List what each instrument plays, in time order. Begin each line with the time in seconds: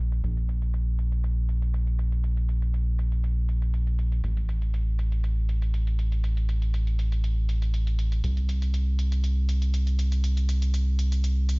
Already playing: analog synth bass A#1
0.12 closed hi-hat
0.24 analog synth bass A#1, closed hi-hat
0.37 closed hi-hat
0.49 closed hi-hat
0.62 closed hi-hat
0.74 closed hi-hat
0.99 closed hi-hat
1.12 closed hi-hat
1.24 closed hi-hat
1.49 closed hi-hat
1.62 closed hi-hat
1.74 closed hi-hat
1.87 closed hi-hat
1.99 closed hi-hat
2.12 closed hi-hat
2.24 closed hi-hat
2.37 closed hi-hat
2.49 closed hi-hat
2.62 closed hi-hat
2.74 closed hi-hat
2.99 closed hi-hat
3.12 closed hi-hat
3.24 closed hi-hat
3.49 closed hi-hat
3.62 closed hi-hat
3.74 closed hi-hat
3.87 closed hi-hat
3.99 closed hi-hat
4.12 closed hi-hat
4.24 analog synth bass A1, closed hi-hat
4.37 closed hi-hat
4.49 closed hi-hat
4.62 closed hi-hat
4.74 closed hi-hat
4.99 closed hi-hat
5.12 closed hi-hat
5.24 closed hi-hat
5.49 closed hi-hat
5.62 closed hi-hat
5.74 closed hi-hat
5.87 closed hi-hat
5.99 closed hi-hat
6.12 closed hi-hat
6.24 closed hi-hat
6.37 closed hi-hat
6.49 closed hi-hat
6.62 closed hi-hat
6.74 closed hi-hat
6.87 closed hi-hat
6.99 closed hi-hat
7.12 closed hi-hat
7.24 closed hi-hat
7.49 closed hi-hat
7.62 closed hi-hat
7.74 closed hi-hat
7.87 closed hi-hat
7.99 closed hi-hat
8.12 closed hi-hat
8.24 analog synth bass C2, closed hi-hat
8.37 closed hi-hat
8.49 closed hi-hat
8.62 closed hi-hat
8.74 closed hi-hat
8.99 closed hi-hat
9.12 closed hi-hat
9.24 closed hi-hat
9.49 closed hi-hat
9.62 closed hi-hat
9.74 closed hi-hat
9.87 closed hi-hat
9.99 closed hi-hat
10.12 closed hi-hat
10.24 closed hi-hat
10.37 closed hi-hat
10.49 closed hi-hat
10.62 closed hi-hat
10.74 closed hi-hat
10.99 closed hi-hat
11.12 closed hi-hat
11.24 closed hi-hat
11.49 closed hi-hat